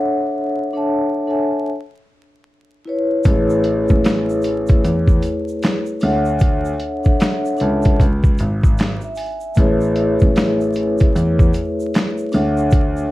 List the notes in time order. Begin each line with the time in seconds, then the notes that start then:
Already playing: D4 A4 C#5 E5 F#5
0.73 D4 A4 C#5 E5 A5
1.27 D4 A4 C#5 E5 G#5
2.85 E4 B4 C#5
3.24 A1 A3 E4 G#4 B4, kick, closed hi-hat, shaker
3.28 C#5
3.50 shaker
3.64 closed hi-hat
3.88 A1 A3 E4 G#4 B4 C#5, kick, shaker
4.04 snare, clap, closed hi-hat, shaker
4.29 shaker
4.42 closed hi-hat, shaker
4.67 kick, closed hi-hat, shaker
4.84 E2, closed hi-hat, shaker
5.08 kick, shaker
5.22 closed hi-hat, shaker
5.48 shaker
5.62 snare, clap, closed hi-hat, shaker
5.86 shaker
6.00 D2 D4 A4 C#5 E5, open hi-hat, shaker
6.04 F#5
6.25 shaker
6.39 kick, closed hi-hat, shaker
6.65 shaker
6.80 closed hi-hat
7.04 D4 A4 C#5 E5, kick, shaker
7.08 F#5
7.20 snare, clap, closed hi-hat, shaker
7.45 shaker
7.57 C#2 D4 A4 C#5 E5, closed hi-hat, shaker
7.61 A5
7.82 kick, closed hi-hat, shaker
8.00 C#2, kick, closed hi-hat, shaker
8.24 kick, shaker
8.38 G#1, closed hi-hat, shaker
8.64 kick, shaker
8.78 snare, clap, closed hi-hat, shaker
9.01 E5, shaker
9.15 G#5, open hi-hat, shaker
9.41 E5, shaker
9.55 A1 A3 E4 G#4 B4, kick, closed hi-hat, shaker
9.59 C#5
9.81 shaker
9.96 closed hi-hat
10.19 A1 A3 E4 G#4 B4, kick, shaker
10.24 C#5
10.36 snare, clap, closed hi-hat, shaker
10.61 shaker
10.73 closed hi-hat, shaker
10.98 kick, closed hi-hat, shaker
11.16 E2, closed hi-hat, shaker
11.39 kick, shaker
11.53 closed hi-hat, shaker
11.80 shaker
11.94 snare, clap, closed hi-hat, shaker
12.18 shaker
12.32 D2 D4 A4 C#5 E5 F#5, open hi-hat, shaker
12.57 shaker
12.71 kick, closed hi-hat, shaker
12.97 shaker